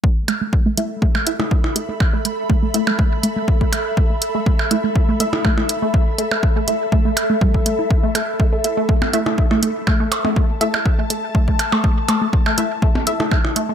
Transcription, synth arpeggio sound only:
X:1
M:4/4
L:1/16
Q:"Swing 16ths" 1/4=122
K:C
V:1 name="Synth arpeggio sound"
A, z A, A, z A, A, z A, A, z A, A, z A, A, | z A, A, z A, A, z A, A, z A, A, z A, A, z | A, A, z A, A, z A, A, z A, A, z A, A, z A, | A, z A, A, z A, A, z A, A, z A, G, z A, E |
z A, A, z A, A, z A, A, z A, A, z A, A, z | A, A, z A, A, z A, A, z A, A, z A, A, z A, | A, z A, A, z A, A, z A, A, z A, A, z A, A, |]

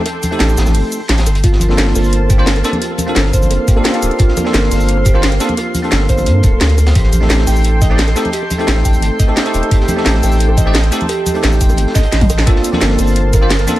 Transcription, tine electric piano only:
X:1
M:4/4
L:1/16
Q:1/4=174
K:Gm
V:1 name="Tine electric piano"
z3 [A,CEGA]8 z4 z | z3 [B,CDFA]8 [B,CDFc] z2 [B,CDFA] z | z3 [B,CDFA]8 [B,CDFA]2 [B,CDFA]3- | [B,CDFA]3 [B,CDFA]8 [B,CDFc] z2 [B,CDFA] z |
z3 [B,CDFA]8 z4 z | z3 [A,CEGA]8 [A,CEGd] z2 [A,CEGA] z | z3 [A,CEGA]8 [A,CEGA]2 [A,CEGA]3- | [A,CEGA]3 [A,CEGA]8 [A,CEGd] z2 [A,CEGA] z |
z3 [A,CEGA]8 z4 z | [B,CDFA]3 [B,CDFA]8 [B,CDFc] z2 [B,CDFA] z |]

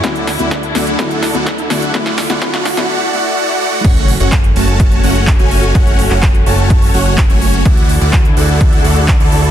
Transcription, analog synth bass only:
X:1
M:4/4
L:1/16
Q:1/4=126
K:F#m
V:1 name="Analog synth bass" clef=bass
D,,3 D,,3 D,,2 z3 D,,3 D,,2 | z3 D,, z3 D,, z8 | F,,,3 F,,,3 F,,,4 F,,,3 F,,,3 | z3 F,,,3 F,,,4 F,,,3 F,,,3 |
D,,3 D,,3 D,,4 D,,3 D,,3 |]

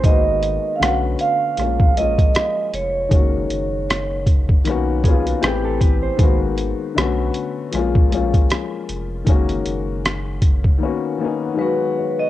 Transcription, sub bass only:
X:1
M:4/4
L:1/16
Q:"Swing 16ths" 1/4=78
K:A#phr
V:1 name="Sub bass" clef=bass
G,,,3 z B,,,2 z2 A,,,2 A,,,2 z2 E,,,2 | F,,,2 F,,,6 B,,,4 =A,,,4 | G,,,3 z B,,,2 z2 A,,,2 A,,,2 z2 E,,,2 | F,,,2 F,,,6 z8 |]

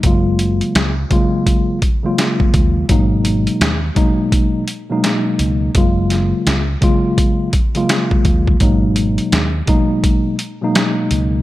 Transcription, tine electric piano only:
X:1
M:4/4
L:1/16
Q:"Swing 16ths" 1/4=84
K:G#dor
V:1 name="Tine electric piano" clef=bass
[C,F,G,A,E]4- [C,F,G,A,E] z [C,F,G,A,E]4 z [C,F,G,A,E]4- [C,F,G,A,E] | [B,,F,G,A,D]4- [B,,F,G,A,D] z [B,,F,G,A,D]4 z [B,,F,G,A,D]4- [B,,F,G,A,D] | [C,F,G,A,E]4- [C,F,G,A,E] z [C,F,G,A,E]4 z [C,F,G,A,E]4- [C,F,G,A,E] | [B,,F,G,A,D]4- [B,,F,G,A,D] z [B,,F,G,A,D]4 z [B,,F,G,A,D]4- [B,,F,G,A,D] |]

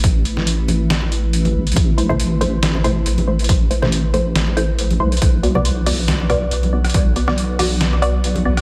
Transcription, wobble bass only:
X:1
M:4/4
L:1/8
Q:"Swing 16ths" 1/4=139
K:Ador
V:1 name="Wobble bass" clef=bass
A,,, A,,,6 A,,, | A,,,6 A,,,2- | A,,, A,,,3 A,,,3 B,,, | B,,,6 B,,,2- |
B,,, B,,,6 B,,, |]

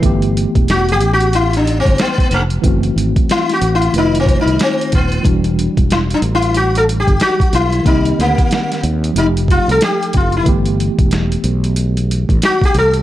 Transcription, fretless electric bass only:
X:1
M:4/4
L:1/16
Q:"Swing 16ths" 1/4=92
K:G
V:1 name="Fretless electric bass" clef=bass
G,,,3 E,,,3 A,,,4- A,,, G,,, z2 =F,,,2 | F,,,2 _A,,, z3 =A,,,2 =F,,,3 C,, z2 _E,,,2 | E,,,3 E,,,3 A,,,4- A,,, G,,, z2 B,,,2 | C,,2 D,, z3 _E,,2 =F,,,3 C,, z2 ^F,,,2 |
G,,,3 E,,,3 B,,,4- B,,, A,,, z2 C,,2 |]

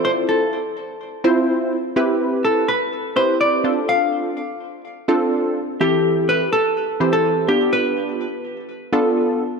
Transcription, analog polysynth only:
X:1
M:4/4
L:1/8
Q:1/4=125
K:C
V:1 name="Analog polysynth"
[CEFA]2 z3 [CEFc]2 z | [CEGB]3 z2 [CEGB]2 [CDFA]- | [CDFA]2 z3 [CDFA]2 z | [E,CEGA]3 z2 [E,CEGc]2 [B,DFG]- |
[B,DFG]2 z3 [B,DFA]2 z |]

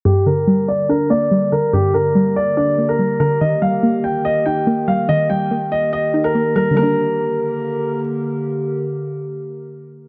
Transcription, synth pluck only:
X:1
M:4/4
L:1/8
Q:1/4=143
K:Gm
V:1 name="Synth pluck" clef=bass
G,, D, G,2 D B, G, D, | G,, D, G,2 D B, G, D, | E, G, B,2 e E B, G, | E, G, B,2 e E B, G, |
[D,G,B,D]8- | [D,G,B,D]8 |]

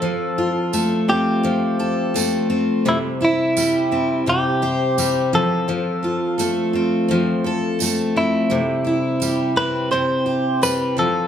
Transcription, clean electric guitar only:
X:1
M:4/4
L:1/8
Q:"Swing 16ths" 1/4=85
K:C
V:1 name="Clean electric guitar"
A3 G4 z | E E3 G3 A- | A6- A E- | E3 B c2 B A |]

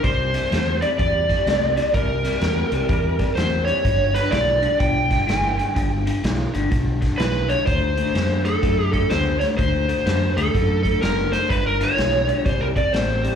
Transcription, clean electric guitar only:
X:1
M:4/4
L:1/8
Q:"Swing" 1/4=126
K:G
V:1 name="Clean electric guitar" clef=bass
[C,G,] [C,G,] [C,A,] [C,G,] [C,G,] [C,G,] [C,A,] [C,G,] | [C,G,] [C,G,] [C,A,] [C,G,] [C,G,] [C,G,] [C,A,] [C,G,] | [G,,D,] [G,,D,] [G,,E,] [G,,D,] [G,,D,] [G,,D,] [G,,E,] [G,,D,] | [G,,D,] [G,,D,] [G,,E,] [G,,D,] [G,,D,] [G,,D,] [G,,E,] [G,,D,] |
[D,A,] [D,A,] [D,B,] [D,A,] [D,A,] [D,A,] [D,B,] [D,A,] | [D,A,] [D,A,] [D,B,] [D,A,] [D,A,] [D,A,] [D,B,] [D,A,] | [G,,D,] [G,,D,] [G,,E,] [G,,D,] [C,G,] [C,G,] [C,A,] [C,G,] |]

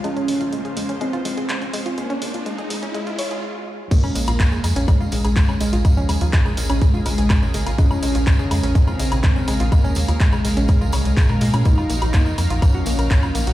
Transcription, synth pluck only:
X:1
M:4/4
L:1/16
Q:1/4=124
K:Bbm
V:1 name="Synth pluck"
A, D A, F A, A A, D A, F A, A A, D A, F | A, D A, F A, A A, D A, F d A z4 | A, D A, F A, A A, D A, F A, A A, D A, F | A, D A, F A, A A, D A, F A, A A, D A, F |
A, D A, F A, A A, D A, F A, A A, D A, F | A, D A, F A, A A, D A, F d A A, B A, D | B, F B, G B, E B, F B, G B, B B, F B, G |]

